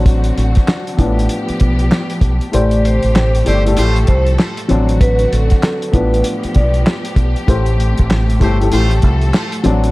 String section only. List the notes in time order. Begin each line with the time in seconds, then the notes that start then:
Already playing: D3 C4 F#4
0.98 F3 B3 G4
2.53 C3 A3 G4
3.78 F3 A4
4.71 D3 C4 F#4
5.92 F3 B3 G4
7.48 C3 A3
8.71 F3 A4
9.64 D3 C4 F#4